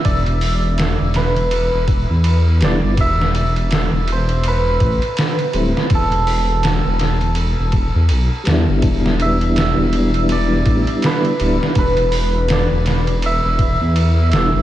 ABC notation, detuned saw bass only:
X:1
M:4/4
L:1/16
Q:"Swing 16ths" 1/4=82
K:Em
V:1 name="Detuned saw bass" clef=bass
E,,,4- E,,, E,,,4 E,,,2 E,,3 E,,, G,,, | E,,,4- E,,, E,,,4- E,,, A,,, z3 D,,, z | E,,,4- E,,, E,,,4 E,,,2 E,, B,,, z E,, G,,, | E,,,4- E,,, E,,,4- E,,, A,,, z3 D,,, z |
E,,,4- E,,, E,,,4 E,,,2 E,,3 E,,, G,,, |]